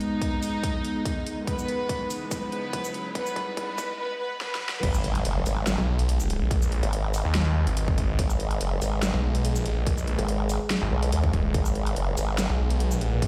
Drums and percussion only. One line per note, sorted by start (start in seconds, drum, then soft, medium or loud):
0.01 closed hi-hat medium
0.22 kick medium
0.22 closed hi-hat medium
0.43 open hi-hat medium
0.43 shaker soft
0.63 kick loud
0.63 closed hi-hat medium
0.85 closed hi-hat medium
1.05 kick medium
1.05 closed hi-hat medium
1.26 closed hi-hat medium
1.47 kick loud
1.47 closed hi-hat medium
1.59 shaker soft
1.68 closed hi-hat medium
1.89 kick loud
1.89 closed hi-hat medium
2.10 open hi-hat medium
2.10 shaker soft
2.31 kick loud
2.31 closed hi-hat medium
2.31 shaker medium
2.52 closed hi-hat medium
2.73 kick loud
2.73 closed hi-hat medium
2.84 shaker medium
2.94 closed hi-hat medium
3.15 kick loud
3.15 closed hi-hat medium
3.26 shaker medium
3.36 kick loud
3.36 closed hi-hat medium
3.57 kick loud
3.57 closed hi-hat medium
3.78 kick loud
3.78 open hi-hat medium
3.78 shaker medium
4.41 snare medium
4.55 snare medium
4.69 snare loud
4.83 kick loud
4.83 closed hi-hat medium
4.83 crash loud
4.94 shaker medium
5.04 closed hi-hat medium
5.15 closed hi-hat medium
5.25 closed hi-hat medium
5.46 open hi-hat medium
5.46 shaker soft
5.67 snare loud
5.67 closed hi-hat medium
5.67 shaker medium
5.99 closed hi-hat medium
6.09 closed hi-hat medium
6.20 shaker medium
6.30 closed hi-hat medium
6.51 kick loud
6.51 closed hi-hat medium
6.62 shaker soft
6.72 closed hi-hat medium
6.83 closed hi-hat medium
6.93 closed hi-hat medium
7.14 open hi-hat medium
7.14 shaker soft
7.35 snare loud
7.35 closed hi-hat medium
7.67 closed hi-hat medium
7.77 closed hi-hat medium
7.88 kick loud
7.98 kick medium
7.98 closed hi-hat medium
8.19 kick loud
8.19 closed hi-hat medium
8.30 shaker medium
8.40 closed hi-hat medium
8.51 closed hi-hat medium
8.61 closed hi-hat medium
8.82 open hi-hat medium
8.82 shaker medium
9.03 snare loud
9.03 closed hi-hat medium
9.03 shaker medium
9.35 closed hi-hat medium
9.45 closed hi-hat medium
9.56 shaker medium
9.66 closed hi-hat medium
9.87 kick loud
9.87 closed hi-hat medium
9.98 shaker medium
10.07 closed hi-hat medium
10.19 closed hi-hat medium
10.28 closed hi-hat medium
10.49 open hi-hat medium
10.49 shaker medium
10.70 snare loud
10.70 closed hi-hat medium
11.03 closed hi-hat medium
11.12 closed hi-hat medium
11.24 kick loud
11.33 kick medium
11.33 closed hi-hat medium
11.54 kick loud
11.54 closed hi-hat medium
11.65 shaker medium
11.75 closed hi-hat medium
11.87 closed hi-hat medium
11.96 closed hi-hat medium
12.17 open hi-hat medium
12.17 shaker medium
12.38 snare loud
12.38 closed hi-hat medium
12.38 shaker medium
12.70 closed hi-hat medium
12.80 closed hi-hat medium
12.91 shaker medium
13.01 closed hi-hat medium
13.22 kick loud
13.22 closed hi-hat medium